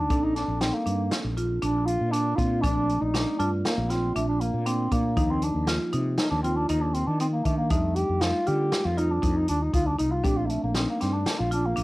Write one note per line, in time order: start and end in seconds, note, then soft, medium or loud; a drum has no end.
0.00 0.11 F2 medium
0.00 0.25 D4 medium
0.10 0.44 A#1 medium
0.10 2.60 C4 medium
0.10 0.38 D4 medium
0.10 2.60 D4 medium
0.10 2.60 A4 medium
0.10 kick loud
0.10 closed hi-hat medium
0.23 0.35 D#4 medium
0.35 0.62 D4 medium
0.35 snare soft
0.35 closed hi-hat medium
0.48 0.70 A#1 medium
0.61 0.75 C4 medium
0.61 0.75 D#4 medium
0.61 snare loud
0.61 closed hi-hat medium
0.74 1.24 A#3 medium
0.86 1.08 G2 medium
0.86 1.14 D4 medium
0.86 closed hi-hat medium
1.11 snare loud
1.11 closed hi-hat medium
1.24 1.58 A#1 medium
1.37 1.51 F4 medium
1.37 closed hi-hat medium
1.61 1.96 A#1 medium
1.61 1.88 D4 medium
1.61 1.90 D4 medium
1.61 closed hi-hat medium
1.86 2.13 F4 loud
1.86 closed hi-hat medium
2.01 2.34 A#2 medium
2.12 2.38 D4 medium
2.12 2.27 D4 medium
2.12 closed hi-hat medium
2.36 2.65 A#2 medium
2.36 2.52 C4 medium
2.36 2.63 F4 loud
2.36 kick medium
2.36 closed hi-hat medium
2.62 2.97 A#1 medium
2.62 5.13 A3 medium
2.62 5.13 C4 medium
2.62 3.03 D4 medium
2.62 2.92 D4 medium
2.62 5.13 D5 medium
2.62 kick loud
2.62 closed hi-hat medium
2.89 closed hi-hat medium
3.01 3.24 A#1 medium
3.01 3.38 D#4 medium
3.14 3.28 D4 medium
3.14 snare loud
3.14 closed hi-hat medium
3.39 3.62 G2 medium
3.39 3.51 D4 medium
3.39 3.68 F4 medium
3.39 closed hi-hat medium
3.65 3.91 A#3 medium
3.65 snare loud
3.65 closed hi-hat medium
3.78 4.11 A#1 medium
3.90 4.14 C4 medium
3.90 4.04 F4 medium
3.90 snare soft
3.90 closed hi-hat medium
4.15 4.49 A#1 medium
4.15 4.27 A3 medium
4.15 4.44 D4 medium
4.15 closed hi-hat medium
4.28 4.42 D4 medium
4.40 4.68 A#3 medium
4.40 closed hi-hat medium
4.54 4.87 A#2 medium
4.66 4.94 C4 medium
4.66 4.80 D4 medium
4.66 closed hi-hat medium
4.91 5.19 A#2 medium
4.91 5.32 A#3 medium
4.91 5.06 D4 medium
4.91 kick medium
4.91 closed hi-hat medium
5.16 5.50 D#2 medium
5.16 7.66 F3 medium
5.16 7.66 A#3 medium
5.16 7.66 D#4 medium
5.16 5.45 D#4 medium
5.16 kick loud
5.16 closed hi-hat medium
5.31 5.45 C4 medium
5.42 5.69 D4 medium
5.42 closed hi-hat medium
5.55 5.77 D#2 medium
5.67 5.82 F4 medium
5.67 snare loud
5.67 closed hi-hat medium
5.93 6.16 C3 medium
5.93 6.21 D#4 medium
5.93 closed hi-hat medium
6.18 6.30 D#4 medium
6.18 snare loud
6.18 closed hi-hat medium
6.30 6.65 D#2 medium
6.30 6.42 D4 medium
6.43 6.57 C4 medium
6.43 6.58 F4 medium
6.43 closed hi-hat medium
6.56 6.68 D4 medium
6.69 7.03 D#2 medium
6.69 6.83 D#4 medium
6.69 6.98 D#4 medium
6.69 closed hi-hat medium
6.81 6.95 D4 medium
6.94 7.08 C4 medium
6.94 closed hi-hat medium
7.07 7.41 D#3 medium
7.07 7.20 D4 medium
7.20 7.26 C4 medium
7.20 7.35 D#4 medium
7.20 closed hi-hat medium
7.33 7.46 A#3 medium
7.44 7.72 D#3 medium
7.44 7.57 A3 medium
7.44 7.60 D4 medium
7.44 kick medium
7.44 closed hi-hat medium
7.57 7.72 A#3 medium
7.69 8.04 F2 medium
7.69 10.20 G3 medium
7.69 7.97 A3 medium
7.69 10.20 A3 medium
7.69 10.20 D#4 medium
7.69 7.99 D#4 medium
7.69 kick loud
7.69 closed hi-hat medium
7.96 8.22 G4 medium
7.96 closed hi-hat medium
8.09 8.31 F2 medium
8.21 8.35 D#4 medium
8.21 8.48 F4 medium
8.21 snare loud
8.21 closed hi-hat medium
8.47 8.70 D3 medium
8.47 8.75 F4 medium
8.47 8.87 G4 loud
8.47 closed hi-hat medium
8.72 snare loud
8.72 closed hi-hat medium
8.85 9.18 F2 medium
8.85 9.00 F4 medium
8.97 9.12 D#4 medium
8.97 9.12 F4 medium
8.97 closed hi-hat medium
9.11 9.38 D4 medium
9.22 9.45 F2 medium
9.22 9.51 D#4 medium
9.22 kick medium
9.22 closed hi-hat medium
9.37 9.48 D#4 medium
9.48 9.72 D#2 medium
9.48 9.64 D4 medium
9.48 closed hi-hat medium
9.62 9.74 D#4 medium
9.73 9.96 D2 medium
9.73 9.88 D#4 medium
9.73 9.88 F4 medium
9.73 kick loud
9.73 closed hi-hat medium
9.87 9.98 D4 medium
9.99 10.25 C2 medium
9.99 10.13 D#4 medium
9.99 closed hi-hat medium
10.12 10.25 F4 medium
10.23 10.58 A#1 medium
10.23 11.83 A3 medium
10.23 11.83 C4 medium
10.23 10.52 D4 medium
10.23 11.83 D4 medium
10.23 10.38 G4 medium
10.23 kick loud
10.23 closed hi-hat medium
10.37 10.47 F4 medium
10.46 10.62 A3 medium
10.46 10.51 A#3 medium
10.46 closed hi-hat medium
10.63 10.85 A#1 medium
10.63 10.78 A#3 medium
10.75 10.88 C4 medium
10.75 10.89 D#4 medium
10.75 snare loud
10.75 closed hi-hat medium
10.89 11.02 A#3 medium
11.01 11.24 G2 medium
11.01 11.14 C4 medium
11.01 11.29 D4 medium
11.01 snare soft
11.01 closed hi-hat medium
11.13 11.41 D4 medium
11.26 snare loud
11.26 closed hi-hat medium
11.39 11.73 A#1 medium
11.39 11.51 F4 medium
11.51 11.67 D4 medium
11.51 11.65 F4 medium
11.51 closed hi-hat medium
11.66 11.83 A#3 medium
11.76 11.83 A#1 medium
11.76 11.83 D4 medium
11.76 closed hi-hat medium